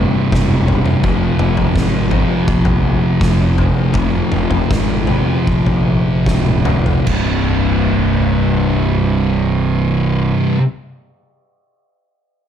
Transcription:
0.00 1.02 C2 medium
0.00 1.03 G2 medium
0.00 1.02 C3 medium
0.32 0.79 E1 medium
0.32 kick loud
0.32 snare medium
0.32 mid tom medium
0.68 floor tom medium
0.86 mid tom medium
1.02 1.27 F1 loud
1.02 2.12 F2 medium
1.02 2.09 C3 medium
1.02 2.09 F3 medium
1.02 kick loud
1.02 floor tom medium
1.39 1.63 F1 medium
1.39 mid tom medium
1.57 floor tom medium
1.76 2.23 G#1 medium
1.76 kick loud
1.76 snare medium
2.10 3.92 F2 medium
2.10 3.92 C3 medium
2.10 3.92 F3 medium
2.10 floor tom medium
2.48 2.95 A#1 loud
2.48 kick loud
2.65 floor tom medium
3.21 3.69 F1 medium
3.21 kick loud
3.21 snare medium
3.58 floor tom medium
3.94 4.20 F1 loud
3.94 5.06 F2 medium
3.94 5.07 C3 medium
3.94 5.07 F3 loud
3.94 kick loud
3.94 floor tom medium
4.32 4.58 F1 medium
4.32 mid tom medium
4.51 floor tom medium
4.51 mid tom medium
4.71 5.20 G#1 medium
4.71 kick loud
4.71 snare medium
5.07 7.06 F2 medium
5.07 7.05 C3 medium
5.07 7.04 F3 medium
5.07 floor tom medium
5.47 5.98 A#1 medium
5.47 kick loud
5.66 floor tom medium
6.26 6.78 C#1 medium
6.26 kick medium
6.26 snare medium
6.46 high tom medium
6.65 mid tom medium
6.86 floor tom medium
7.06 10.31 C1 medium
7.06 10.56 C2 medium
7.06 10.58 G2 loud
7.06 kick loud
7.06 crash medium
7.11 10.61 C3 medium

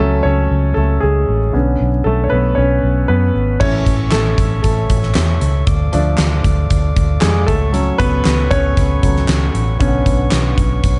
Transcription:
0.00 0.20 C#2 medium
0.00 1.50 F#3 medium
0.00 0.24 A3 medium
0.00 0.24 C#4 medium
0.00 0.25 A4 medium
0.23 0.46 C#2 medium
0.23 0.73 C#4 medium
0.23 0.77 C#5 medium
0.51 0.72 C#2 loud
0.74 0.98 C#2 medium
0.74 1.01 A3 soft
0.74 0.99 A4 medium
1.01 1.24 C#2 medium
1.01 1.39 G#3 soft
1.01 1.37 G#4 medium
1.29 1.50 A1 medium
1.53 1.76 B1 medium
1.53 1.88 D3 soft
1.53 1.88 B3 soft
1.53 1.89 C#4 medium
1.81 2.01 B1 medium
2.04 2.27 B1 medium
2.04 2.24 A3 medium
2.04 2.25 A4 medium
2.24 2.31 C#5 medium
2.30 2.53 B1 medium
2.30 2.56 B3 medium
2.30 2.57 B4 medium
2.55 2.79 B1 medium
2.55 3.31 C#4 medium
2.55 3.30 C#5 medium
2.83 3.04 B1 medium
3.08 3.30 F#2 medium
3.08 3.57 B3 medium
3.08 3.62 B4 medium
3.35 3.56 G#1 medium
3.60 3.82 A1 medium
3.60 4.34 E3 medium
3.60 4.12 A3 soft
3.60 4.09 C#4 medium
3.60 7.44 A4 medium
3.60 4.14 C#5 medium
3.60 5.65 C#5 soft
3.60 5.65 E5 medium
3.60 5.65 C#6 medium
3.60 kick loud
3.60 crash medium
3.86 4.08 A1 medium
3.86 kick medium
3.86 closed hi-hat medium
4.11 4.34 A1 medium
4.11 4.61 A3 medium
4.11 4.61 A4 medium
4.11 snare loud
4.11 clap medium
4.11 closed hi-hat medium
4.38 4.59 A1 medium
4.38 kick medium
4.38 closed hi-hat medium
4.63 4.85 A1 medium
4.63 5.38 A3 medium
4.63 5.37 A4 medium
4.63 kick medium
4.63 closed hi-hat medium
4.90 5.11 A1 medium
4.90 kick medium
4.90 closed hi-hat medium
5.03 snare soft
5.14 5.37 E2 medium
5.14 snare loud
5.14 clap medium
5.14 closed hi-hat medium
5.41 5.63 C#2 medium
5.41 closed hi-hat medium
5.67 5.89 D2 medium
5.67 7.46 D5 medium
5.67 7.46 F5 medium
5.67 7.46 D6 medium
5.67 kick medium
5.67 closed hi-hat medium
5.92 6.14 D2 medium
5.92 6.27 F3 medium
5.92 6.28 A3 soft
5.92 6.28 D4 medium
5.92 closed hi-hat medium
6.17 6.40 D2 medium
6.17 snare medium
6.17 clap medium
6.17 closed hi-hat medium
6.44 6.66 D2 medium
6.44 kick medium
6.44 closed hi-hat medium
6.70 6.92 D2 medium
6.70 kick medium
6.70 closed hi-hat medium
6.96 7.18 D2 medium
6.96 kick medium
6.96 closed hi-hat medium
7.21 7.44 F2 medium
7.21 7.47 G#3 medium
7.21 7.48 G#4 medium
7.21 snare loud
7.21 clap medium
7.21 closed hi-hat medium
7.46 7.90 C#2 medium
7.46 7.71 A3 medium
7.46 8.01 A4 medium
7.46 9.78 A4 medium
7.46 9.78 C#5 medium
7.46 9.78 F#5 medium
7.46 9.78 C#6 medium
7.46 kick medium
7.46 closed hi-hat medium
7.72 8.07 F#3 medium
7.72 8.08 A3 soft
7.72 8.08 C#4 medium
7.72 closed hi-hat medium
7.98 8.21 C#2 medium
7.98 8.48 B3 medium
7.98 8.52 B4 loud
7.98 kick medium
7.98 closed hi-hat medium
8.25 8.47 C#2 medium
8.25 snare loud
8.25 clap medium
8.25 closed hi-hat medium
8.51 8.72 C#2 medium
8.51 9.01 C#4 medium
8.51 9.50 C#5 loud
8.51 kick medium
8.51 closed hi-hat medium
8.77 8.98 C#2 medium
8.77 kick medium
8.77 closed hi-hat medium
9.02 9.24 C#2 medium
9.02 9.26 F#3 soft
9.02 9.26 A3 soft
9.02 9.26 C#4 soft
9.02 kick medium
9.02 closed hi-hat medium
9.17 snare soft
9.28 9.50 C#2 medium
9.28 snare loud
9.28 clap medium
9.28 closed hi-hat medium
9.55 9.76 A1 medium
9.55 closed hi-hat medium
9.79 10.02 B1 loud
9.79 10.99 D3 medium
9.79 10.99 B3 medium
9.79 10.99 C#4 medium
9.79 10.99 B4 medium
9.79 10.99 C#5 medium
9.79 10.99 F#5 medium
9.79 10.99 C#6 medium
9.79 kick loud
9.79 closed hi-hat medium
10.06 10.27 B1 medium
10.06 kick medium
10.06 closed hi-hat medium
10.31 10.53 B1 medium
10.31 snare loud
10.31 clap medium
10.31 closed hi-hat medium
10.58 10.79 B1 medium
10.58 kick medium
10.58 closed hi-hat medium
10.84 10.99 B1 medium
10.84 kick medium
10.84 closed hi-hat medium

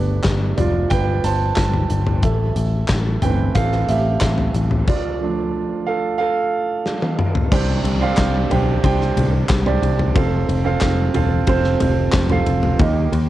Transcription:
0.00 0.19 G1 medium
0.00 2.25 G3 soft
0.00 2.25 A3 soft
0.00 2.25 B3 medium
0.00 0.54 D4 medium
0.00 0.53 B4 medium
0.23 0.52 G1 medium
0.23 kick medium
0.23 snare loud
0.23 clap medium
0.23 closed hi-hat medium
0.57 0.85 F1 medium
0.57 0.89 F4 medium
0.57 0.92 D5 medium
0.57 closed hi-hat medium
0.57 floor tom medium
0.90 1.18 G1 medium
0.90 1.22 B4 medium
0.90 1.24 G5 loud
0.90 kick medium
0.90 closed hi-hat medium
1.24 1.51 G1 medium
1.24 1.87 C5 medium
1.24 1.86 A5 medium
1.24 closed hi-hat medium
1.56 1.84 G1 medium
1.56 kick loud
1.56 snare loud
1.56 clap medium
1.56 closed hi-hat medium
1.74 floor tom medium
1.90 2.23 G1 medium
1.90 closed hi-hat medium
2.07 floor tom medium
2.23 2.50 A1 medium
2.23 3.19 A4 medium
2.23 3.25 E5 medium
2.23 kick loud
2.23 closed hi-hat medium
2.56 2.83 A1 medium
2.56 closed hi-hat medium
2.88 3.16 A1 medium
2.88 kick medium
2.88 snare medium
2.88 clap medium
2.88 closed hi-hat medium
3.22 3.49 G1 medium
3.22 3.66 E3 medium
3.22 3.67 A3 soft
3.22 3.67 C4 medium
3.22 3.54 B4 medium
3.22 3.56 G5 medium
3.22 closed hi-hat medium
3.22 floor tom medium
3.55 3.82 A1 medium
3.55 3.87 A4 medium
3.55 3.86 F5 medium
3.55 kick medium
3.55 closed hi-hat medium
3.72 snare soft
3.89 4.16 A1 medium
3.89 4.52 G4 medium
3.89 4.50 E5 medium
3.89 closed hi-hat medium
4.21 4.49 A1 medium
4.21 kick loud
4.21 snare loud
4.21 clap medium
4.21 closed hi-hat medium
4.38 floor tom medium
4.54 4.81 A1 medium
4.54 closed hi-hat medium
4.71 floor tom medium
4.87 5.83 F4 medium
4.87 5.90 D5 medium
4.87 kick loud
4.87 crash medium
5.21 6.16 F3 soft
5.21 6.16 A3 soft
5.21 6.16 D4 medium
5.87 5.95 A4 medium
5.87 5.94 F5 medium
6.18 6.82 A4 medium
6.18 6.81 F5 loud
6.86 snare medium
7.02 high tom medium
7.19 mid tom medium
7.35 floor tom medium
7.51 7.79 C2 loud
7.51 8.47 C3 medium
7.51 7.97 D4 medium
7.51 7.97 G4 medium
7.51 7.97 C5 medium
7.51 7.98 G5 medium
7.51 kick loud
7.51 crash loud
7.51 downlifter medium
7.84 8.11 C2 medium
7.84 ride medium
8.00 8.46 D4 medium
8.00 8.47 G4 medium
8.00 8.47 C5 medium
8.00 8.47 F5 loud
8.17 8.45 C2 medium
8.17 kick medium
8.17 snare loud
8.17 clap medium
8.17 ride medium
8.50 8.77 B1 medium
8.50 8.81 D4 medium
8.50 8.81 G4 medium
8.50 8.81 C5 medium
8.50 8.82 G5 medium
8.50 floor tom medium
8.50 ride medium
8.83 9.11 C2 medium
8.83 9.59 D4 medium
8.83 9.59 G4 medium
8.83 9.60 C5 medium
8.83 9.60 G5 loud
8.83 kick loud
8.83 ride medium
9.01 snare soft
9.17 9.44 C2 medium
9.17 floor tom medium
9.17 ride medium
9.49 9.77 C2 loud
9.49 kick loud
9.49 snare loud
9.49 clap medium
9.49 ride medium
9.65 10.11 D4 medium
9.65 10.11 G4 medium
9.65 10.12 C5 medium
9.65 10.12 D5 medium
9.65 floor tom medium
9.82 10.09 C2 medium
9.82 ride medium
9.99 floor tom medium
10.14 10.43 F1 loud
10.14 10.60 C4 medium
10.14 10.61 F4 medium
10.14 10.61 A4 medium
10.14 10.62 F5 medium
10.14 kick loud
10.14 ride medium
10.49 10.76 F1 medium
10.49 ride medium
10.64 11.10 C4 medium
10.64 11.10 F4 medium
10.64 11.11 A4 medium
10.64 11.11 F5 loud
10.81 11.09 F1 loud
10.81 kick medium
10.81 snare loud
10.81 clap medium
10.81 ride medium
11.14 11.42 E1 medium
11.14 11.44 C4 medium
11.14 11.45 F4 medium
11.14 11.45 A4 medium
11.14 11.46 F5 loud
11.14 floor tom medium
11.14 ride medium
11.47 11.75 F1 loud
11.47 12.23 C4 loud
11.47 12.24 F4 medium
11.47 12.24 A4 medium
11.47 12.24 C5 loud
11.47 kick loud
11.47 ride medium
11.64 snare soft
11.80 12.08 F1 medium
11.80 floor tom medium
11.80 ride medium
12.13 12.40 F1 medium
12.13 kick loud
12.13 snare loud
12.13 clap medium
12.13 ride medium
12.29 12.76 C4 medium
12.29 12.76 F4 medium
12.29 12.76 A4 medium
12.29 12.76 F5 medium
12.29 floor tom medium
12.29 ride soft
12.46 12.74 F1 medium
12.46 ride medium
12.63 floor tom medium
12.79 13.06 D#2 loud
12.79 13.29 D#3 medium
12.79 13.25 A#3 medium
12.79 13.25 D#4 medium
12.79 13.25 G4 medium
12.79 13.26 D#5 loud
12.79 kick loud
12.79 ride medium
13.12 13.29 D#2 medium
13.12 ride medium

